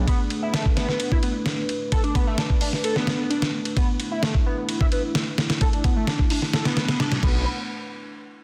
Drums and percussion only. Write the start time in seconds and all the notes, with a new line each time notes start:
0.08 kick, ride
0.30 ride
0.54 snare, ride
0.66 kick
0.77 snare, ride
0.89 snare
1.00 ride
1.12 kick
1.23 ride
1.46 snare, ride
1.69 ride
1.92 kick, ride
2.04 ride
2.15 kick, ride
2.38 snare, ride
2.50 kick
2.61 open hi-hat
2.73 snare
2.84 ride
2.96 snare
3.07 snare, ride
3.31 ride
3.42 snare, ride
3.65 ride
3.77 kick, ride
4.00 ride
4.23 snare, ride
4.35 kick
4.69 ride
4.81 kick
4.92 ride
5.15 snare, ride
5.38 snare, ride
5.50 snare, ride
5.61 kick, ride
5.73 ride
5.84 kick, ride
6.07 snare, ride
6.19 kick
6.30 open hi-hat
6.42 snare
6.53 snare, ride
6.65 snare, ride
6.77 snare, ride
6.88 snare, ride
7.00 snare, ride
7.12 snare, ride
7.23 kick, crash